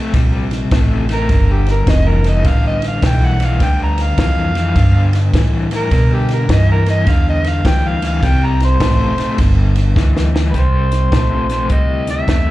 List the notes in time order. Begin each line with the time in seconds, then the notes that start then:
Already playing: C3 A3
0.14 A#1 C3 G3, kick, snare, ride
0.51 snare, ride
0.71 A1 C3 A3, kick, snare, ride
1.09 C3 A3, snare, ride
1.14 A#4
1.29 G1 G2 D3, kick, snare, ride
1.52 G4
1.67 snare, ride
1.71 A#4
1.87 F1 G2 E3 D#5, kick, snare, ride
2.09 A#4
2.24 G2 E3, snare, ride
2.29 D#5
2.45 A1 G2 D3 F5, kick, snare, ride
2.67 D#5
2.82 snare, ride
2.87 F5
3.02 B1 G2 E3, kick, snare, ride
3.07 G5
3.25 F#5
3.40 G2 E3, snare, ride
3.45 F5
3.60 D2 G2 D3 G5, kick, snare, ride
3.83 A#5
3.98 snare, ride
4.02 F5
4.18 F2 G2 E3, kick, snare, ride
4.55 G2 E3, snare, ride
4.76 G2 D3, kick, snare, ride
5.13 snare, ride
5.34 G2 A2 E3, kick, snare, ride
5.71 G2 E3, snare, ride
5.76 A#4
5.91 G2 B2 D3, kick, snare, ride
6.14 G4
6.29 snare, ride
6.33 A#4
6.49 G2 E3 D#5, kick, snare, ride
6.72 A#4
6.86 G2 E3 D#5, snare, ride
7.07 E2 G2 D3 F5, kick, snare, ride
7.29 D#5
7.44 snare, ride
7.49 F5
7.65 D2 G2 E3 G5, kick, snare, ride
7.88 F5
8.02 G2 E3, snare, ride
8.07 F5
8.23 C2 C3 G3, kick, snare, ride
8.27 G5
8.45 A#5
8.60 snare, ride
8.65 C5
8.80 A1 C3 A3, kick, snare, ride
9.18 C3 A3, muted upright bass stroke, snare, ride
9.38 G1 G2 D3, kick, snare, ride
9.76 snare, ride
9.96 D2 G2 E3, kick, snare
10.17 snare
10.34 G2 E3, snare
10.51 C2 C3 G3 B4, kick, closed hi-hat
10.55 C5, snare
10.92 snare, closed hi-hat
11.12 A#1 C3 A3, kick, snare, closed hi-hat
11.50 C3 A3, snare, closed hi-hat
11.70 D2 C3 G3 D#5, kick, closed hi-hat
12.07 E5, snare, closed hi-hat
12.28 E2 C3 A3, kick, snare, closed hi-hat